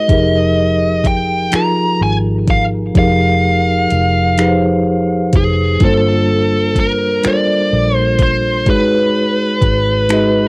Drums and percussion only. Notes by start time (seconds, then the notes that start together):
0.09 kick, closed hi-hat
1.04 kick, closed hi-hat
1.52 finger snap, closed hi-hat
2.47 kick, closed hi-hat
2.95 kick, closed hi-hat
3.90 closed hi-hat
4.38 finger snap, closed hi-hat
5.33 kick, closed hi-hat
5.80 kick, closed hi-hat
6.76 kick, closed hi-hat
7.24 finger snap, closed hi-hat
8.19 kick, closed hi-hat
8.66 kick, closed hi-hat
9.62 kick, closed hi-hat
10.09 finger snap, closed hi-hat